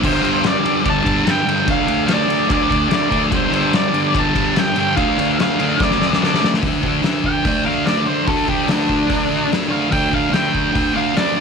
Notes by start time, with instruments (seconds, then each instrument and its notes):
Already playing: distorted electric guitar D4
0.04 distorted electric guitar G2 D3 G3, lead electric guitar C5, kick, crash
0.22 distorted electric guitar G2 D3 G3, ride
0.44 distorted electric guitar G2 D3 G3, lead electric guitar D5, snare, ride
0.64 distorted electric guitar G2 D3 G3, ride
0.82 distorted electric guitar G2 D3 G3, kick, ride
0.89 lead electric guitar A5
1.04 distorted electric guitar G2 D3 G3, kick, ride
1.25 distorted electric guitar G2 D3 G3, snare, ride
1.30 lead electric guitar G5
1.46 distorted electric guitar G2 D3 G3, ride
1.66 distorted electric guitar D3 A3 D4, kick, ride
1.71 lead electric guitar F5
1.87 distorted electric guitar D3 A3 D4, ride
2.07 distorted electric guitar D3 A3 D4, snare, ride
2.13 lead electric guitar D5
2.27 distorted electric guitar D3 A3 D4, ride
2.48 distorted electric guitar D3 A3 D4, lead electric guitar D5, kick, ride
2.69 distorted electric guitar D3 A3 D4, kick, ride
2.89 distorted electric guitar D3 A3 D4, snare, ride
2.95 lead electric guitar D5
3.10 distorted electric guitar D3 A3 D4, kick, ride
3.31 distorted electric guitar G2 D3 G3, kick, ride
3.35 lead electric guitar C5
3.50 distorted electric guitar G2 D3 G3, ride
3.73 distorted electric guitar G2 D3 G3, lead electric guitar D5, snare, ride
3.93 distorted electric guitar G2 D3 G3, ride
4.15 distorted electric guitar G2 D3 G3, kick, ride
4.19 lead electric guitar A5
4.35 distorted electric guitar G2 D3 G3, kick, ride
4.55 distorted electric guitar G2 D3 G3, lead electric guitar G5, snare, ride
4.76 distorted electric guitar G2 D3 G3, ride
4.80 lead electric guitar G5
4.97 distorted electric guitar D3 A3 D4, lead electric guitar F5, kick, ride
5.19 distorted electric guitar D3 A3 D4, ride
5.40 distorted electric guitar D3 A3 D4, lead electric guitar F5, snare, ride
5.60 distorted electric guitar D3 A3 D4, ride
5.79 distorted electric guitar D3 A3 D4, lead electric guitar D5, kick, snare
5.91 snare
5.98 distorted electric guitar D3 A3 D4, snare
6.13 snare
6.21 distorted electric guitar D3 A3 D4, lead electric guitar D5, snare
6.34 snare
6.41 distorted electric guitar D3 A3 D4, snare
6.54 snare
6.62 distorted electric guitar D3 A3, kick, open hi-hat
6.66 distorted electric guitar D4
6.83 distorted electric guitar D4, kick
6.88 distorted electric guitar A3
7.03 distorted electric guitar D3 A3, snare, open hi-hat
7.07 distorted electric guitar D4
7.24 lead electric guitar G5, kick
7.44 distorted electric guitar D3 A3 D4, kick, open hi-hat
7.65 distorted electric guitar D4, lead electric guitar F5
7.70 distorted electric guitar A3
7.86 distorted electric guitar D3 A3, lead electric guitar D5, snare, open hi-hat
7.90 distorted electric guitar D4
8.05 distorted electric guitar A3 D4, lead electric guitar C5
8.26 distorted electric guitar D3 A3 D4, lead electric guitar A4, kick, open hi-hat
8.47 distorted electric guitar A3 D4, lead electric guitar G4, kick
8.67 distorted electric guitar D3 A3, lead electric guitar D4, snare, open hi-hat
8.72 distorted electric guitar D4
8.89 kick
9.08 distorted electric guitar D3 A3 D4, kick, open hi-hat
9.29 distorted electric guitar A3 D4
9.49 distorted electric guitar D3 A3 D4, open hi-hat
9.53 snare
9.68 distorted electric guitar A3 D4, lead electric guitar F5
9.90 distorted electric guitar D3 A3 D4, lead electric guitar G5, kick, open hi-hat
10.10 distorted electric guitar A3 D4, lead electric guitar F5, kick
10.30 distorted electric guitar D3 A3, lead electric guitar G5, open hi-hat
10.34 distorted electric guitar D4, snare
10.55 kick
10.72 distorted electric guitar D3 A3 D4, kick
10.76 open hi-hat
10.94 distorted electric guitar A3 D4, lead electric guitar F5
11.14 distorted electric guitar D3 A3, lead electric guitar D5, snare, open hi-hat
11.19 distorted electric guitar D4
11.35 distorted electric guitar D4